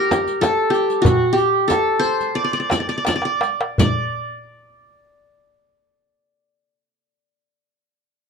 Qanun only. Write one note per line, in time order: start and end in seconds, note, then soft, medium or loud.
0.00 0.70 G4 medium
0.00 0.47 A#4 medium
0.41 1.58 A4 medium
0.70 1.08 G4 medium
1.02 1.39 F#4 medium
1.33 2.58 G4 medium
1.68 2.85 A4 medium
1.99 3.05 C5 medium
2.35 2.44 D5 medium
2.44 2.53 D5 medium
2.53 2.59 D5 medium
2.60 2.71 D5 soft
2.71 2.80 D5 medium
2.80 2.88 D5 soft
2.89 2.97 D5 medium
2.98 3.06 D5 medium
3.07 3.15 D5 medium
3.16 3.25 D5 medium
3.25 3.79 D5 medium
3.80 7.68 D5 medium